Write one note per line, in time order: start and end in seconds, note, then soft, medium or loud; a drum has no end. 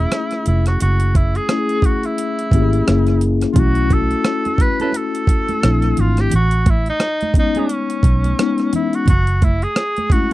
0.00 1.50 A3 medium
0.00 1.51 C#4 soft
0.00 0.47 E4 medium
0.00 1.52 E4 soft
0.00 1.52 G#4 medium
0.12 cross-stick medium
0.12 closed hi-hat medium
0.31 cross-stick soft
0.31 closed hi-hat soft
0.46 0.75 F1 medium
0.46 0.65 E4 medium
0.46 closed hi-hat medium
0.66 0.80 F#4 medium
0.66 cross-stick soft
0.66 closed hi-hat soft
0.80 1.38 F#1 medium
0.80 1.18 F#4 medium
0.80 closed hi-hat medium
1.00 closed hi-hat soft
1.15 1.38 E4 medium
1.15 kick medium
1.15 closed hi-hat medium
1.35 1.87 G#4 medium
1.35 closed hi-hat soft
1.49 2.00 A3 medium
1.49 2.00 C#4 medium
1.49 2.01 E4 soft
1.49 1.58 G#4 soft
1.49 cross-stick loud
1.49 closed hi-hat medium
1.59 2.04 G#4 medium
1.69 closed hi-hat soft
1.82 2.07 F#4 medium
1.82 kick medium
1.82 closed hi-hat medium
2.03 3.23 E4 medium
2.03 closed hi-hat soft
2.18 closed hi-hat medium
2.39 closed hi-hat soft
2.51 2.81 G#1 medium
2.51 2.86 A#3 medium
2.51 2.87 C#4 medium
2.51 2.88 E4 medium
2.51 kick medium
2.51 closed hi-hat medium
2.56 2.62 G4 medium
2.62 2.89 G#4 medium
2.73 closed hi-hat soft
2.87 3.44 F#1 medium
2.87 3.29 A#3 medium
2.87 3.30 C#4 medium
2.87 3.30 E4 medium
2.87 3.31 G#4 medium
2.87 cross-stick medium
2.87 closed hi-hat medium
3.07 cross-stick soft
3.07 closed hi-hat soft
3.21 closed hi-hat medium
3.41 cross-stick soft
3.41 closed hi-hat soft
3.52 4.54 A3 medium
3.52 3.61 F4 medium
3.52 kick loud
3.52 closed hi-hat medium
3.52 low conga medium
3.57 4.13 B1 medium
3.57 4.54 C#4 medium
3.57 4.54 E4 medium
3.57 4.55 F#4 medium
3.57 3.95 F#4 loud
3.75 closed hi-hat soft
3.90 4.63 A4 loud
3.90 kick medium
3.90 closed hi-hat medium
3.90 high conga medium
4.11 closed hi-hat soft
4.25 cross-stick loud
4.25 closed hi-hat medium
4.45 closed hi-hat soft
4.45 high conga medium
4.58 4.80 B4 medium
4.58 kick medium
4.58 closed hi-hat medium
4.80 4.92 C#4 soft
4.80 4.92 E4 medium
4.80 4.91 A4 medium
4.80 4.98 B4 medium
4.80 closed hi-hat soft
4.80 high conga soft
4.92 closed hi-hat medium
4.92 muted conga soft
4.97 6.02 A4 loud
5.15 closed hi-hat soft
5.27 kick medium
5.27 closed hi-hat medium
5.48 closed hi-hat soft
5.48 high conga medium
5.63 5.92 A#1 medium
5.63 6.05 A3 medium
5.63 6.06 C4 medium
5.63 6.06 D4 medium
5.63 6.07 E4 medium
5.63 cross-stick medium
5.63 closed hi-hat medium
5.82 cross-stick soft
5.82 closed hi-hat soft
5.97 6.26 G#1 medium
5.97 6.22 F4 medium
5.97 closed hi-hat medium
5.97 low conga medium
6.17 6.33 G4 medium
6.17 cross-stick soft
6.17 closed hi-hat soft
6.30 6.89 A1 medium
6.30 closed hi-hat medium
6.30 muted conga soft
6.30 low conga medium
6.36 6.72 F#4 medium
6.51 closed hi-hat medium
6.66 kick medium
6.66 closed hi-hat medium
6.66 muted conga soft
6.66 high conga medium
6.70 6.88 E4 medium
6.86 7.34 D#4 medium
6.86 closed hi-hat soft
7.00 cross-stick medium
7.00 closed hi-hat medium
7.00 muted conga soft
7.21 closed hi-hat soft
7.21 high conga medium
7.34 8.33 G#3 medium
7.34 8.34 B3 medium
7.34 8.34 C#4 soft
7.34 kick medium
7.34 closed hi-hat medium
7.38 8.34 D#4 medium
7.38 7.61 D#4 medium
7.55 7.67 D#4 medium
7.55 7.67 G#4 medium
7.55 closed hi-hat soft
7.55 high conga soft
7.59 7.68 C#4 soft
7.59 8.75 C#4 medium
7.69 closed hi-hat medium
7.90 closed hi-hat soft
8.03 8.32 B1 medium
8.03 kick medium
8.03 closed hi-hat medium
8.24 closed hi-hat soft
8.24 high conga medium
8.39 8.65 G#3 medium
8.39 8.65 B3 medium
8.39 8.66 C#4 medium
8.39 8.66 D#4 medium
8.39 cross-stick loud
8.39 closed hi-hat medium
8.58 cross-stick soft
8.58 closed hi-hat soft
8.73 8.97 E4 medium
8.73 closed hi-hat medium
8.73 muted conga soft
8.73 low conga soft
8.93 9.09 F#4 medium
8.93 closed hi-hat soft
9.06 9.65 F#1 medium
9.06 9.46 F#4 loud
9.06 kick loud
9.06 closed hi-hat medium
9.06 muted conga soft
9.06 low conga medium
9.27 closed hi-hat soft
9.42 9.65 E4 medium
9.42 kick medium
9.42 closed hi-hat medium
9.42 muted conga soft
9.42 high conga medium
9.62 10.14 G#4 loud
9.62 closed hi-hat soft
9.76 cross-stick medium
9.76 closed hi-hat medium
9.97 closed hi-hat soft
9.97 high conga medium
10.10 10.33 G#3 medium
10.10 10.33 A3 soft
10.10 10.33 C#4 medium
10.10 10.33 F#4 medium
10.10 kick medium
10.10 closed hi-hat medium
10.10 muted conga soft
10.14 10.33 E4 medium